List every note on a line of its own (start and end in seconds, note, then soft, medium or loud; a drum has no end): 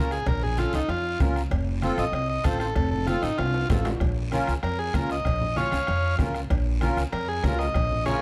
0.00 0.20 C#2 loud
0.00 0.17 C#4 medium
0.00 0.18 F4 medium
0.00 0.11 A#4 medium
0.00 0.18 A#4 medium
0.11 0.27 G#4 medium
0.11 bombo rim medium
0.11 short guiro medium
0.26 0.64 A#1 loud
0.26 0.42 A#4 medium
0.26 bombo low medium
0.26 bombo rim medium
0.26 cowbell loud
0.26 high conga soft
0.26 long guiro medium
0.42 0.58 G#4 medium
0.42 low conga medium
0.57 0.79 C#4 medium
0.57 0.79 F4 medium
0.57 0.73 F4 medium
0.57 0.79 A4 medium
0.57 bombo rim medium
0.57 cowbell medium
0.57 high conga medium
0.57 short guiro medium
0.73 0.80 C#2 medium
0.73 0.89 D#4 medium
0.73 bombo rim medium
0.73 short guiro medium
0.88 1.14 F2 medium
0.88 1.20 F4 loud
0.88 bombo rim medium
0.88 cowbell medium
0.88 high conga soft
0.88 long guiro medium
1.19 1.45 C#2 loud
1.19 1.42 C#4 medium
1.19 1.42 F4 medium
1.19 1.42 A#4 medium
1.19 bombo low loud
1.19 bombo rim medium
1.19 cowbell medium
1.19 high conga medium
1.19 low conga medium
1.19 low timbale medium
1.19 short guiro medium
1.36 bombo rim medium
1.36 short guiro medium
1.51 1.89 F1 loud
1.51 bombo low medium
1.51 bombo rim medium
1.51 cowbell loud
1.51 high conga soft
1.51 long guiro medium
1.82 2.04 C4 loud
1.82 2.05 F4 medium
1.82 2.05 A4 loud
1.82 bombo rim medium
1.82 cowbell medium
1.82 high conga medium
1.82 short guiro medium
1.98 2.04 A1 medium
1.98 2.14 D#5 medium
1.98 bombo rim medium
1.98 short guiro medium
2.12 2.38 C2 medium
2.12 2.28 D#5 medium
2.12 bombo rim medium
2.12 cowbell medium
2.12 high conga soft
2.12 long guiro medium
2.30 2.45 D#5 medium
2.44 2.70 A1 loud
2.44 2.67 C4 medium
2.44 2.67 F4 medium
2.44 2.59 A4 medium
2.44 2.67 C5 medium
2.44 bombo low medium
2.44 bombo rim loud
2.44 cowbell medium
2.44 high conga medium
2.44 short guiro medium
2.60 2.75 A4 loud
2.60 bombo rim medium
2.60 short guiro medium
2.75 3.13 F1 loud
2.75 2.90 A4 medium
2.75 bombo low medium
2.75 bombo rim medium
2.75 cowbell loud
2.75 high conga soft
2.75 long guiro medium
2.91 3.07 A4 medium
2.91 low conga medium
3.07 3.29 C4 medium
3.07 3.22 F4 medium
3.07 3.30 F4 medium
3.07 3.30 A4 medium
3.07 bombo rim medium
3.07 cowbell medium
3.07 high conga medium
3.07 short guiro medium
3.22 3.29 A1 medium
3.22 3.38 D#4 medium
3.22 bombo rim medium
3.22 short guiro medium
3.38 3.64 C2 medium
3.38 3.68 F4 medium
3.38 bombo rim medium
3.38 cowbell medium
3.38 high conga soft
3.38 high timbale loud
3.38 long guiro medium
3.54 high timbale medium
3.70 3.95 A1 loud
3.70 3.92 C4 medium
3.70 3.92 F4 medium
3.70 3.92 A4 medium
3.70 bombo low medium
3.70 bombo rim medium
3.70 cowbell medium
3.70 high conga medium
3.70 low conga medium
3.70 low timbale medium
3.70 short guiro medium
3.85 bombo rim medium
3.85 low timbale medium
3.85 short guiro medium
4.00 4.38 A#1 loud
4.00 bombo low medium
4.00 bombo rim medium
4.00 cowbell loud
4.00 high conga soft
4.00 long guiro medium
4.31 4.54 C#4 loud
4.31 4.54 F4 medium
4.31 4.54 A#4 loud
4.31 bombo rim medium
4.31 cowbell medium
4.31 high conga medium
4.31 short guiro medium
4.47 4.54 C#2 loud
4.47 bombo rim medium
4.47 short guiro medium
4.63 4.88 F2 medium
4.63 4.79 A#4 medium
4.63 bombo rim medium
4.63 cowbell medium
4.63 high conga soft
4.63 long guiro medium
4.79 4.94 G#4 medium
4.94 5.19 C#2 loud
4.94 5.16 C#4 medium
4.94 5.16 F4 medium
4.94 5.16 A#4 medium
4.94 5.10 A#4 medium
4.94 bombo low loud
4.94 bombo rim medium
4.94 cowbell medium
4.94 high conga medium
4.94 short guiro medium
5.09 5.56 D#5 medium
5.09 bombo rim medium
5.09 short guiro medium
5.25 5.63 A#1 loud
5.25 bombo low medium
5.25 bombo rim medium
5.25 cowbell loud
5.25 high conga soft
5.25 long guiro medium
5.41 low conga medium
5.55 5.78 C#4 medium
5.55 5.78 F4 medium
5.55 5.78 C#5 medium
5.55 6.15 C#5 medium
5.55 6.17 F5 medium
5.55 bombo rim medium
5.55 cowbell medium
5.55 high conga medium
5.55 short guiro medium
5.72 5.79 C#2 loud
5.72 bombo rim medium
5.72 short guiro medium
5.87 6.13 F2 medium
5.87 bombo rim medium
5.87 cowbell medium
5.87 high conga soft
5.87 long guiro medium
6.18 6.44 C#2 loud
6.18 6.40 C#4 medium
6.18 6.41 F4 medium
6.18 6.41 A#4 medium
6.18 bombo low medium
6.18 bombo rim medium
6.18 cowbell medium
6.18 high conga medium
6.18 low conga medium
6.18 short guiro medium
6.34 bombo rim medium
6.34 short guiro medium
6.50 6.88 A#1 loud
6.50 bombo low medium
6.50 bombo rim medium
6.50 cowbell loud
6.50 high conga soft
6.50 long guiro medium
6.80 7.03 C#4 medium
6.80 7.03 F4 medium
6.80 7.03 A#4 loud
6.80 bombo rim medium
6.80 cowbell medium
6.80 high conga medium
6.80 short guiro medium
6.97 7.03 C#2 medium
6.97 bombo rim medium
6.97 short guiro medium
7.12 7.38 F2 medium
7.12 7.28 A#4 loud
7.12 bombo rim medium
7.12 cowbell medium
7.12 high conga soft
7.12 long guiro medium
7.29 7.44 G#4 loud
7.43 7.69 C#2 loud
7.43 7.66 C#4 medium
7.43 7.66 F4 medium
7.43 7.59 A#4 medium
7.43 7.67 A#4 medium
7.43 bombo low loud
7.43 bombo rim medium
7.43 cowbell medium
7.43 high conga medium
7.43 low timbale medium
7.43 short guiro medium
7.59 8.05 D#5 medium
7.59 bombo rim medium
7.59 short guiro medium
7.74 8.13 A#1 loud
7.74 bombo low medium
7.74 bombo rim medium
7.74 cowbell loud
7.74 high conga soft
7.74 long guiro medium
7.91 low conga medium
8.06 8.22 C#4 medium
8.06 8.22 F4 medium
8.06 8.22 G#4 loud
8.06 8.22 A#4 medium
8.06 8.22 C#5 medium
8.06 bombo rim medium
8.06 cowbell medium
8.06 high conga medium
8.06 high timbale medium
8.06 short guiro medium